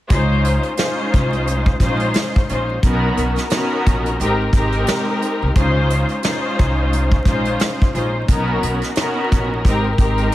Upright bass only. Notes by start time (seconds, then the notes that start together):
0.10 C#2
1.14 C2
1.80 A#1
2.49 A#1
2.83 B1
3.18 B1
3.87 A#1
4.20 G#1
4.53 G#1
5.42 C2
5.56 C#2
6.59 C2
7.26 A#1
7.95 A#1
8.29 B1
8.63 B1
9.32 A#1
9.65 G#1
9.98 G#1